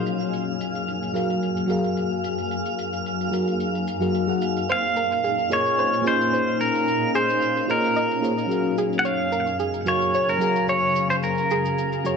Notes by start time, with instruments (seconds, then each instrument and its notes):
Already playing: fm electric piano F#3 F#4 G#4 A#4 F5, ambient pad G#4, synth texture F5
0.06 ambient pad F#2 F#3 A#3 F5, shaker
0.20 shaker
0.33 shaker
0.61 shaker
0.75 shaker
0.88 shaker
1.03 shaker
1.13 fm electric piano F#3 F#4 G#4 A#4 F5, shaker
1.30 shaker
1.43 shaker
1.57 shaker
1.66 fm electric piano F#3 F#4 G#4, shaker
1.70 fm electric piano A#4 F5
1.84 shaker
1.97 shaker
2.24 ambient pad D#4, shaker
2.38 shaker
2.51 shaker
2.66 shaker
2.79 shaker
2.93 shaker
3.06 shaker
3.21 shaker
3.31 fm electric piano F#3 F#4 G#4 A#4 F5, shaker
3.48 shaker
3.60 shaker
3.75 shaker
3.87 shaker
4.00 fm electric piano F#3 F#4 G#4 A#4 F5, shaker
4.14 shaker
4.27 fm electric piano F#3 F#4 G#4 A#4 F#5
4.42 shaker
4.57 shaker
4.69 ambient pad A#2 C#4, synth arpeggio sound C5, pedal steel guitar F5, shaker
4.96 synth arpeggio sound A#4, shaker
5.12 shaker
5.24 synth arpeggio sound G#4, shaker
5.39 shaker
5.50 fm electric piano A#3 F4 G#4 A#4 C#5 D#5, pedal steel guitar C#5, shaker
5.66 shaker
5.79 synth arpeggio sound C5, shaker
5.93 shaker
6.02 fm electric piano A#3 C#4 F4 G#4 C5
6.06 pedal steel guitar C5, fm electric piano D#5, shaker
6.21 shaker
6.33 synth arpeggio sound C5, shaker
6.61 pedal steel guitar A#4, shaker
6.75 shaker
6.88 shaker
7.15 synth arpeggio sound G#4, pedal steel guitar C5, shaker
7.30 shaker
7.42 shaker
7.57 shaker
7.67 fm electric piano A#3 F4 G#4 C5 C#5 D#5, pedal steel guitar A#4, synth arpeggio sound C5, shaker
7.84 shaker
7.96 synth arpeggio sound D#5, shaker
8.11 shaker
8.21 fm electric piano A#3 F4 G#4 C5 C#5 D#5, shaker
8.38 shaker
8.47 fm electric piano F#3 F#4 G#4
8.51 fm electric piano A#4 F5, shaker
8.78 ambient pad F#2 C#3 G#4 G#5, synth arpeggio sound G#4, shaker
8.93 shaker
8.99 pedal steel guitar F#5
9.05 synth arpeggio sound C#5, pedal steel guitar F5, shaker
9.32 synth arpeggio sound A#4, shaker
9.47 shaker
9.60 synth arpeggio sound G#4, shaker
9.74 shaker
9.85 fm electric piano F#3 F#4 G#4 A#4 F5, pedal steel guitar C#5, shaker
10.02 shaker
10.14 synth arpeggio sound C#5, shaker
10.29 pedal steel guitar A#4, shaker
10.39 fm electric piano F#3 F#4 G#4 A#4, shaker
10.44 fm electric piano F5
10.56 shaker
10.69 synth arpeggio sound C#5, pedal steel guitar C#5, shaker
10.96 shaker
11.10 pedal steel guitar C5, shaker
11.23 pedal steel guitar A#4, shaker
11.38 shaker
11.51 synth arpeggio sound G#4, shaker
11.65 shaker
11.78 shaker
11.93 shaker
12.04 fm electric piano F#3 F#4 G#4 A#4 F5, synth arpeggio sound C#5, shaker